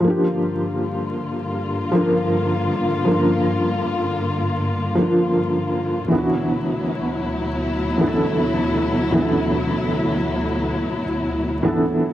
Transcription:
0.00 string section G2 D3 A#3 F4, felt piano F3 A#3
0.08 felt piano D4 G4
1.92 felt piano F3 A#3
1.98 felt piano D4 A#4
3.05 felt piano F3 A#3
3.11 felt piano D4 A#4
4.95 felt piano F3 A#3
5.02 felt piano D4 F4
6.08 string section D2 B2 F#3 E4, felt piano E3 B3
6.15 felt piano D4 F#4
7.98 felt piano E3 B3
8.04 felt piano D4 A4
9.12 felt piano E3 B3
9.19 felt piano D4 A4
11.63 felt piano E3 B3 D4
11.68 felt piano A4

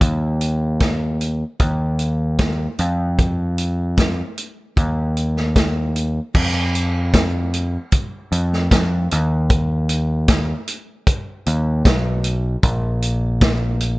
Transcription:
0.01 picked electric bass D#2, kick, closed hi-hat
0.41 closed hi-hat
0.80 kick, snare, closed hi-hat
1.21 closed hi-hat
1.59 picked electric bass D#2, kick, closed hi-hat
1.99 closed hi-hat
2.38 kick, snare, closed hi-hat
2.78 picked electric bass F2, closed hi-hat
3.19 kick, closed hi-hat
3.58 closed hi-hat
3.98 kick, snare, closed hi-hat
4.38 closed hi-hat
4.77 picked electric bass D#2, kick, closed hi-hat
5.17 closed hi-hat
5.37 snare
5.56 kick, snare, closed hi-hat
5.96 closed hi-hat
6.35 picked electric bass F2, kick, crash
6.75 closed hi-hat
7.14 kick, snare, closed hi-hat
7.53 closed hi-hat
7.92 kick, closed hi-hat
8.32 picked electric bass F2, closed hi-hat
8.53 snare
8.71 picked electric bass F2, kick, snare, closed hi-hat
9.11 picked electric bass D#2, closed hi-hat
9.50 kick, closed hi-hat
9.89 closed hi-hat
10.28 kick, snare, closed hi-hat
10.67 closed hi-hat
11.07 kick, closed hi-hat
11.46 picked electric bass D#2, closed hi-hat
11.85 picked electric bass B1, kick, snare, closed hi-hat
12.24 closed hi-hat
12.63 picked electric bass A#1, kick, closed hi-hat
13.02 closed hi-hat
13.41 kick, snare, closed hi-hat
13.80 closed hi-hat

